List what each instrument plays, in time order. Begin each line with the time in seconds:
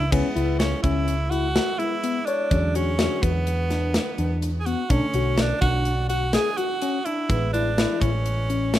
Already playing: tenor saxophone E4
0.12 picked electric bass C#2, grand piano G#3 B3 E4, tenor saxophone B3, tine electric piano C#4, kick, crash
0.36 picked electric bass C#2, tine electric piano E4, closed hi-hat
0.59 tenor saxophone C#4, snare, closed hi-hat
0.83 picked electric bass C#2, tine electric piano C#4, tenor saxophone E4, kick, closed hi-hat
1.08 closed hi-hat
1.30 tine electric piano E4, tenor saxophone F#4, closed hi-hat
1.56 tine electric piano F#4, snare, closed hi-hat
1.78 grand piano G#3 B3 E4, tenor saxophone E4, tine electric piano E4, closed hi-hat
2.04 tine electric piano B3, closed hi-hat
2.26 tenor saxophone D4, tine electric piano C#5, closed hi-hat
2.51 picked electric bass E2, grand piano D3 F#3 G#3 C#4, kick, closed hi-hat
2.75 tenor saxophone C#4, tine electric piano F#4, closed hi-hat
2.99 tine electric piano F#4, snare, closed hi-hat
3.23 picked electric bass E2, tenor saxophone B3, kick, closed hi-hat
3.47 closed hi-hat
3.70 tine electric piano D4, snare, closed hi-hat
3.94 snare, closed hi-hat
4.18 picked electric bass E2, tine electric piano D4, closed hi-hat
4.42 closed hi-hat
4.60 tenor saxophone G#4
4.66 tine electric piano B3, tenor saxophone F#4, closed hi-hat
4.90 picked electric bass B1, grand piano D3 A3 C#4, tenor saxophone C#4, tine electric piano D4, kick, closed hi-hat
5.14 picked electric bass B1, tine electric piano F#4, closed hi-hat
5.38 tenor saxophone D4, snare, closed hi-hat
5.61 picked electric bass B1, tine electric piano D4, tenor saxophone F#4, kick, closed hi-hat
5.85 closed hi-hat
6.09 tenor saxophone F#4, tine electric piano F#4, closed hi-hat
6.33 tenor saxophone G#4, tine electric piano G#4, snare, closed hi-hat
6.58 tenor saxophone F#4, tine electric piano F#4, closed hi-hat
6.82 tine electric piano C#4, closed hi-hat
7.05 tine electric piano D4, tenor saxophone E4, closed hi-hat
7.29 picked electric bass A1, grand piano E3 G#3 B3, kick, closed hi-hat
7.53 tenor saxophone D4, tine electric piano E4, closed hi-hat
7.78 tine electric piano E4, snare, closed hi-hat
8.01 picked electric bass A1, tenor saxophone C#4, kick, closed hi-hat
8.26 closed hi-hat
8.50 tine electric piano C#4, closed hi-hat
8.74 snare, closed hi-hat